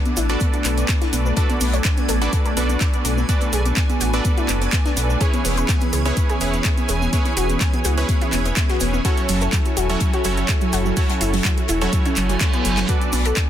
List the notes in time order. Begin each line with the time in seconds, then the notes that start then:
Already playing: A3 B3 D4 F#4 A4 B4 D5 G#5
0.05 B3, closed hi-hat, cabasa
0.17 A1 E4, closed hi-hat, open hi-hat, cabasa
0.29 B3 D4 F#4 A4 B4 D5, closed hi-hat, cabasa
0.40 B3, kick, closed hi-hat, cabasa
0.53 D4, closed hi-hat, cabasa
0.65 B1 B3, clap, closed hi-hat, open hi-hat, cabasa
0.77 B3, closed hi-hat, cabasa
0.89 B3, kick, snare, clap, closed hi-hat, cabasa
1.01 E4, snare, closed hi-hat, cabasa
1.13 B1 B3, closed hi-hat, open hi-hat, cabasa
1.26 B3, cabasa
1.37 D4 F#4 A4 B4 D5, kick, closed hi-hat, cabasa
1.50 B3, closed hi-hat, cabasa
1.61 B1 B3, open hi-hat, cabasa
1.74 C#5, closed hi-hat, cabasa
1.84 B3, kick, snare, clap, closed hi-hat, cabasa
1.97 B3, closed hi-hat, cabasa
2.08 A1 A4, closed hi-hat, open hi-hat, cabasa
2.21 B3 D4 F#4 A4 B4 D5, closed hi-hat, cabasa
2.33 B3, kick, closed hi-hat, cabasa
2.45 A4, closed hi-hat, cabasa
2.57 B1 B3 D4 F#4 A4 B4 D5, closed hi-hat, open hi-hat, cabasa
2.69 B3, closed hi-hat, cabasa
2.80 kick, snare, clap, closed hi-hat, cabasa
2.93 B3, closed hi-hat, cabasa
3.05 B1 A4, closed hi-hat, open hi-hat, cabasa
3.18 B3, cabasa
3.29 B3 D4 F#4 A4 B4 D5, kick, closed hi-hat, cabasa
3.41 B3, closed hi-hat, cabasa
3.53 B1 G#4, closed hi-hat, open hi-hat, cabasa
3.66 B3, closed hi-hat, cabasa
3.77 B3, kick, snare, clap, closed hi-hat, cabasa
3.90 B3, closed hi-hat, cabasa
4.00 A1 F#4, closed hi-hat, open hi-hat, cabasa
4.13 B3 D4 F#4 A4 B4 D5, closed hi-hat, cabasa
4.25 B3, kick, closed hi-hat, cabasa
4.37 E4, closed hi-hat, cabasa
4.49 F#1 B3, clap, closed hi-hat, open hi-hat, cabasa
4.61 B3, closed hi-hat, cabasa
4.73 B3, kick, snare, clap, closed hi-hat, cabasa
4.85 D4, snare, closed hi-hat, cabasa
4.97 B1 B3, closed hi-hat, open hi-hat, cabasa
5.10 B3, cabasa
5.21 E3 C#4 E4 G#4 B4 C#5, kick, closed hi-hat, cabasa
5.34 B3, closed hi-hat, cabasa
5.45 E1 B3, open hi-hat, cabasa
5.57 B4, closed hi-hat, cabasa
5.69 B3, kick, snare, clap, closed hi-hat, cabasa
5.81 B3, closed hi-hat, cabasa
5.93 C#2 G#4, closed hi-hat, open hi-hat, cabasa
6.05 B3 C#4 E4 G#4 B4 C#5, closed hi-hat, cabasa
6.17 B3, kick, closed hi-hat, cabasa
6.30 G#4, closed hi-hat, cabasa
6.41 E1 B3 C#4 E4 G#4 B4 C#5, closed hi-hat, open hi-hat, cabasa
6.54 B3, closed hi-hat, cabasa
6.64 kick, snare, clap, closed hi-hat, cabasa
6.78 B3, closed hi-hat, cabasa
6.88 E1 G#4, closed hi-hat, open hi-hat, cabasa
7.02 B3, cabasa
7.13 B3 C#4 E4 G#4 B4 C#5, kick, closed hi-hat, cabasa
7.25 B3, closed hi-hat, cabasa
7.37 E1 F#4, closed hi-hat, open hi-hat, cabasa
7.49 B3, closed hi-hat, cabasa
7.60 B3, kick, snare, clap, closed hi-hat, cabasa
7.73 B3, closed hi-hat, cabasa
7.84 C#2 F#4, closed hi-hat, open hi-hat, cabasa
7.98 B3 C#4 E4 G#4 B4 C#5, closed hi-hat, cabasa
8.09 B3, kick, closed hi-hat, cabasa
8.21 E4, closed hi-hat, cabasa
8.32 E1 B3, clap, closed hi-hat, open hi-hat, cabasa
8.46 B3, closed hi-hat, cabasa
8.57 B3, kick, snare, clap, closed hi-hat, cabasa
8.69 F#4, snare, closed hi-hat, cabasa
8.80 E1 B3, closed hi-hat, open hi-hat, cabasa
8.94 B3, cabasa
9.05 F#3 C#4 E4 F#4 A4 C#5, kick, closed hi-hat, cabasa
9.17 F#3, closed hi-hat, cabasa
9.29 F#1 F#3, open hi-hat, cabasa
9.41 A4, closed hi-hat, cabasa
9.52 F#3, kick, snare, clap, closed hi-hat, cabasa
9.65 F#3, closed hi-hat, cabasa
9.77 E1 F#4, closed hi-hat, open hi-hat, cabasa
9.89 F#3 C#4 E4 F#4 A4 C#5, closed hi-hat, cabasa
10.00 F#3, kick, closed hi-hat, cabasa
10.13 F#4, closed hi-hat, cabasa
10.24 F#1 F#3 C#4 E4 F#4 A4 C#5, closed hi-hat, open hi-hat, cabasa
10.37 F#3, closed hi-hat, cabasa
10.48 kick, snare, clap, closed hi-hat, cabasa
10.61 F#3, closed hi-hat, cabasa
10.73 F#1 F#4, closed hi-hat, open hi-hat, cabasa
10.86 F#3, cabasa
10.97 F#3 C#4 E4 F#4 A4 C#5, kick, closed hi-hat, open hi-hat, cabasa
11.09 F#3, closed hi-hat, cabasa
11.21 F#1 E4, open hi-hat, cabasa
11.33 F#3, closed hi-hat, open hi-hat, cabasa
11.45 F#3, kick, snare, clap, closed hi-hat, cabasa
11.57 F#3, closed hi-hat, cabasa
11.68 E1 E4, closed hi-hat, open hi-hat, cabasa
11.81 F#3 C#4 E4 F#4 A4 C#5, closed hi-hat, cabasa
11.93 F#3, kick, closed hi-hat, reverse cymbal, cabasa
12.05 C#4, closed hi-hat, cabasa
12.16 F#1 F#3, clap, closed hi-hat, open hi-hat, cabasa
12.29 F#3, closed hi-hat, cabasa
12.40 F#3, kick, snare, clap, closed hi-hat, cabasa
12.53 B3, closed hi-hat, cabasa
12.65 F#1 F#3, closed hi-hat, open hi-hat, cabasa
12.77 F#3, snare, clap, closed hi-hat, cabasa
12.89 A3 B3 D4 F#4 A4 B4 D5 F#5, kick, closed hi-hat, cabasa
13.01 B3, closed hi-hat, cabasa
13.13 B1 B3, open hi-hat, cabasa
13.25 A4, closed hi-hat, cabasa
13.36 B3, kick, snare, clap, closed hi-hat, cabasa